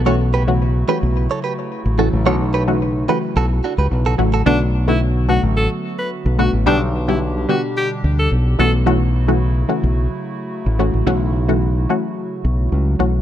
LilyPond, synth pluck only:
\new Staff \with { instrumentName = "Synth pluck" } { \time 4/4 \key fis \phrygian \tempo 4 = 109 <e a cis' fis'>16 r8 <e a cis' fis'>16 r8 <e a cis' fis'>16 r4. r16 <e a cis' fis'>16 r16 | <e a cis' fis'>16 r8 <e a cis' fis'>16 r8 <e a cis' fis'>16 r4. r16 <e a cis' fis'>16 r16 | <d a b fis'>16 r8 <d a b fis'>16 r8 <d a b fis'>16 r4. r16 <d a b fis'>16 r16 | <d g b g'>16 r8 <d g b g'>16 r8 <d g b g'>16 r4. r16 <e a cis' fis'>16 r16 |
<e a cis' fis'>16 r8 <e a cis' fis'>16 r8 <e a cis' fis'>16 r4. r16 <e a cis' fis'>16 r16 | <e a cis' fis'>16 r8 <e a cis' fis'>16 r8 <e a cis' fis'>16 r4. r16 <e a cis' fis'>16 r16 | }